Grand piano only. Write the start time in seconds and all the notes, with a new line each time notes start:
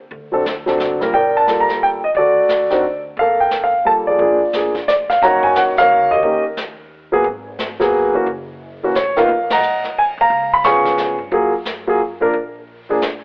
0.32 F#3 C4 D4 A4
0.66 F#3 C4 D4 A4
1.01 G3 A#3 F4 A#4
1.14 A#4 D5 G5
1.37 A5
1.47 G3 A#3 F4 A4
1.60 A#5
1.83 G5
2.04 D#5
2.17 F#4 A4 D5
2.71 D#3 C4 D4 F#4
3.19 A4 A#4 F5
3.40 G5
3.63 F5
3.85 G3 A#3 F4 A4 A5
4.07 F4 G#4 D5
4.19 F3 A#3 D4 G#4
4.54 F3 A#3 D4 G#4
4.88 D5
5.10 F5
5.22 D#3 A#3 C#4 F#4 C#5 F#5 A#5
5.44 G#5
5.56 F#5
5.78 A#4 C#5 F5
6.11 G4 A#4 D#5
6.24 D#3 A#3 C#4 G4
7.12 F#3 A#3 B3 G#4
7.80 F#3 A#3 B3 G#4
8.14 E3 A#3 C#4 F#4
8.83 E3 A#3 C#4 F#4
8.96 C#5
9.17 D#3 A#3 B3 F4 A#4 F5
9.52 D#5 F#5 A#5
9.99 G#5
10.21 F5 A#5
10.53 B5
10.65 F3 B3 C#4 G#4 F5 G#5 C#6
11.32 F#3 A#3 F4 G#4
11.87 F#3 A#3 F4 G#4
12.21 F3 A#3 D4 A#4
12.89 F3 A#3 D4 G#4